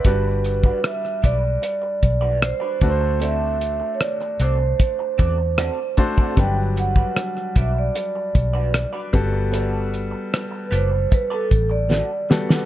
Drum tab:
HH |x-x-x-x-x-x-x-x-|x-x-x-x-x-x-x-x-|x-x-x-x-x-x-x-x-|x-x-x-x-x-x-----|
SD |----rr------r---|----rr------r---|----rr------r---|----r-------o-oo|
BD |o--o--o---o---o-|--------o-o---oo|o--o--o---o---o-|--------o-o-----|